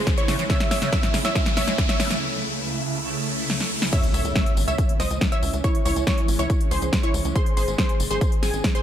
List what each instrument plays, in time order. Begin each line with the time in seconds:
Already playing: ambient pad C#2 C#3 G#3 E4 G#4, synth pluck G#4 C5 C6, riser
0.07 acid bass C#2, kick, snare, closed hi-hat, tambourine
0.17 synth pluck E4 C#5 C#6, closed hi-hat
0.28 acid bass C#3, snare, open hi-hat, tambourine
0.39 acid bass E3, closed hi-hat, tambourine
0.50 ambient pad C#3 A3 E5, acid bass C#3, synth pluck C#5 E5 E6, kick, snare, closed hi-hat, tambourine
0.60 snare, closed hi-hat
0.71 synth pluck C#5 E5 E6, snare, open hi-hat, tambourine
0.82 acid bass C#3, snare, closed hi-hat, tambourine
0.93 acid bass F#3, synth pluck C#5 E5 E6, kick, snare, closed hi-hat, tambourine
1.03 acid bass G#2, snare, closed hi-hat
1.14 acid bass C#3, snare, open hi-hat, tambourine
1.25 acid bass E3, synth pluck C#5 E5 E6, snare, closed hi-hat, tambourine
1.35 acid bass G#3, kick, snare, closed hi-hat, tambourine
1.46 acid bass C#3, snare, closed hi-hat
1.57 acid bass C3, synth pluck C#5 E5 E6, snare, open hi-hat, tambourine
1.68 acid bass G#3, snare, closed hi-hat, tambourine
1.78 acid bass C#2, kick, snare, closed hi-hat, tambourine
1.89 synth pluck C#5 E5 E6, snare, closed hi-hat
2.00 acid bass C#3, snare, open hi-hat, tambourine
2.10 acid bass E3, snare, closed hi-hat, tambourine
3.50 snare
3.61 snare
3.82 snare
3.93 ambient pad E3 G#3 C#4, synth pluck C#5 E5 E6, kick, closed hi-hat, crash, tambourine, impact
4.03 closed hi-hat
4.14 analog synth bass C#2, synth pluck C#5 E5 E6, open hi-hat, tambourine
4.25 analog synth bass C#2, closed hi-hat, tambourine
4.36 synth pluck C#5 E5 E6, kick, snare, closed hi-hat, tambourine
4.46 closed hi-hat
4.57 analog synth bass G#1, open hi-hat, tambourine
4.68 analog synth bass C#2, synth pluck C#5 E5 E6, closed hi-hat, tambourine
4.78 kick, closed hi-hat, tambourine
4.89 closed hi-hat
5.00 analog synth bass C#2, synth pluck C5 D#5 D#6, snare, open hi-hat, tambourine
5.10 analog synth bass C#2, closed hi-hat, tambourine
5.21 kick, snare, closed hi-hat, tambourine
5.32 synth pluck C#5 E5 E6, closed hi-hat
5.43 analog synth bass C#2, open hi-hat, tambourine
5.53 analog synth bass C#2, closed hi-hat, tambourine
5.64 synth pluck E4 C#5 C#6, kick, closed hi-hat, tambourine
5.75 closed hi-hat
5.85 analog synth bass C#2, synth pluck E4 C#5 C#6, open hi-hat, tambourine
5.96 analog synth bass C#2, closed hi-hat, tambourine
6.07 synth pluck E4 C#5 C#6, kick, snare, closed hi-hat
6.18 closed hi-hat
6.28 analog synth bass G#1, open hi-hat, tambourine
6.39 analog synth bass C#2, synth pluck E4 C#5 C#6, closed hi-hat, tambourine
6.50 kick, closed hi-hat, tambourine
6.61 closed hi-hat
6.71 analog synth bass C#2, synth pluck G#4 C5 C6, open hi-hat, tambourine
6.82 analog synth bass C#2, closed hi-hat, tambourine
6.93 kick, snare, closed hi-hat, tambourine
7.03 synth pluck E4 C#5 C#6, closed hi-hat
7.14 analog synth bass C#2, open hi-hat, tambourine
7.25 analog synth bass C#2, closed hi-hat, tambourine
7.36 ambient pad D#3 C4, synth pluck G#4 C5 C6, kick, closed hi-hat, tambourine
7.46 closed hi-hat
7.57 analog synth bass G#1, synth pluck G#4 C5 C6, open hi-hat, tambourine
7.68 analog synth bass G#1, closed hi-hat, tambourine
7.78 synth pluck G#4 C5 C6, kick, snare, closed hi-hat
7.89 closed hi-hat
8.00 analog synth bass F#1, open hi-hat, tambourine
8.11 analog synth bass G#1, synth pluck G#4 C5 C6, closed hi-hat, tambourine
8.21 kick, closed hi-hat, tambourine
8.32 closed hi-hat
8.43 analog synth bass G#1, synth pluck C4 G#4 G#5, snare, open hi-hat, tambourine
8.53 analog synth bass G#1, closed hi-hat, tambourine
8.64 kick, snare, closed hi-hat, tambourine
8.75 synth pluck G#4 C5 C6, closed hi-hat